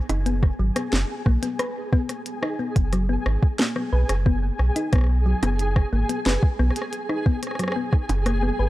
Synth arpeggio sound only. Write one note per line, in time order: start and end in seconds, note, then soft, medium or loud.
0.09 0.25 D#4 medium
0.26 0.41 B3 medium
0.59 0.68 F#3 medium
0.76 0.91 B3 medium
1.26 1.42 A#3 medium
1.43 1.51 B3 medium
1.59 1.68 B4 medium
1.93 2.07 B3 loud
2.43 2.58 D#4 medium
2.59 2.74 B3 medium
2.93 3.02 F#3 medium
3.09 3.24 B3 medium
3.59 3.75 A#3 medium
3.76 3.85 B3 medium
3.93 4.01 B4 medium
4.26 4.41 B3 loud
4.76 4.92 D#4 medium
4.93 5.07 B3 medium
5.26 5.35 F#3 medium
5.43 5.57 B3 medium
5.93 6.08 A#3 medium
6.09 6.18 B3 medium
6.26 6.35 B4 medium
6.59 6.74 B3 loud
7.09 7.25 D#4 medium
7.26 7.41 B3 medium
7.59 7.68 F#3 medium
7.76 7.91 B3 medium
8.26 8.42 A#3 medium
8.43 8.51 B3 medium
8.59 8.68 B4 medium